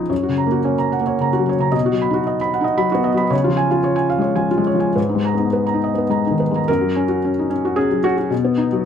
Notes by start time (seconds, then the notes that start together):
Already playing: C#2 F3 F#3 D#4 F4 G#4
0.10 F#2 C#5
0.23 F#4
0.28 C#3
0.38 A#5
0.46 A#3
0.52 F#4
0.64 C#4 C#5
0.78 A#5
0.92 F#5
1.01 A#3
1.07 C#5
1.20 C#3 A#5
1.33 F#4
1.39 F#3
1.49 C#5
1.59 C#3 A#5
1.72 B2 D#5
1.86 F#4
1.92 F#3
2.02 B5
2.10 D#4 F#4
2.27 D#5
2.41 B5
2.54 F#5
2.61 D#4 D#5
2.77 F#3 B5
2.92 B3 F#4
3.04 D#5
3.14 F#3 B5
3.30 C#3 C#5
3.44 F3 F4
3.57 G#5
3.71 F4
3.84 C#5
3.96 G#5
4.10 F5
4.19 G#3 C#5
4.35 F3 G#5
4.51 F4
4.58 G#3
4.67 C#5
4.75 F3
4.80 G#5
4.96 G#2 B4
5.09 D#4
5.15 G#3
5.25 A#5
5.34 B3
5.39 D#4
5.53 B4
5.67 A#5
5.74 D#4
5.84 D#5
5.94 B3 B4
6.09 G#3 A#5
6.26 D#4
6.31 D#3
6.40 B4
6.51 G#3
6.55 A#5
6.68 F#2 A#4
6.81 F#3
6.96 C#4
7.09 F#4
7.25 C#4
7.39 D#4
7.50 C#4
7.65 F#4
7.76 C#4 G#4
7.91 F#3
8.04 C#4 F#4
8.31 B2
8.45 B3
8.58 D#4
8.72 F#3